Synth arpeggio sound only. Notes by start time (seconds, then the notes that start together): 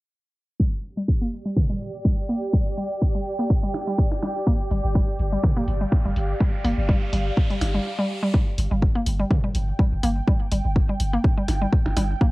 0.60 G3
0.97 G3
1.21 A#3
1.45 G3
1.70 G3
2.05 G3
2.29 A#3
2.53 G3
2.78 G3
3.15 G3
3.39 A#3
3.63 G3
3.87 G3
4.23 G3
4.47 A#3
4.71 G3
4.95 G3
5.33 G3
5.57 A#3
5.81 G3
6.05 G3
6.40 G3
6.64 A#3
6.89 G3
7.13 G3
7.50 G3
7.75 G3
7.99 G3
8.23 G3
8.34 G3
8.71 G3
8.95 A#3
9.20 G3
9.44 G3
9.79 G3
10.03 A#3
10.27 G3
10.52 G3
10.89 G3
11.13 A#3
11.38 G3
11.62 G3
11.97 G3
12.21 A#3